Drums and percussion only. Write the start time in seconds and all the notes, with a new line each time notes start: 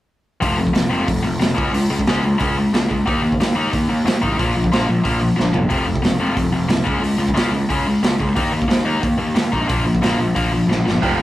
0.42 kick, open hi-hat
0.67 kick
0.75 snare, open hi-hat
1.08 kick, open hi-hat
1.41 snare, open hi-hat
1.58 kick
1.74 open hi-hat
1.99 kick
2.06 snare, open hi-hat
2.39 kick, open hi-hat
2.74 snare, open hi-hat
2.91 kick
3.08 kick, open hi-hat
3.32 kick
3.40 snare, open hi-hat
3.73 kick, open hi-hat
4.07 snare, open hi-hat
4.23 kick
4.39 kick, open hi-hat
4.64 kick
4.72 snare, open hi-hat
5.05 kick, open hi-hat
5.39 snare
5.54 floor tom
5.70 kick, open hi-hat
5.96 kick
6.04 snare, open hi-hat
6.37 kick, open hi-hat
6.69 snare, open hi-hat
6.87 kick
7.04 open hi-hat
7.28 kick
7.36 snare, open hi-hat
7.70 kick, open hi-hat
8.03 snare, open hi-hat
8.20 kick
8.36 kick, open hi-hat
8.62 kick
8.70 snare, open hi-hat
9.03 kick, open hi-hat
9.36 snare, open hi-hat
9.53 kick
9.69 kick, open hi-hat
9.95 kick
10.03 snare, open hi-hat
10.36 kick, open hi-hat
10.71 snare
10.88 snare
11.03 kick, open hi-hat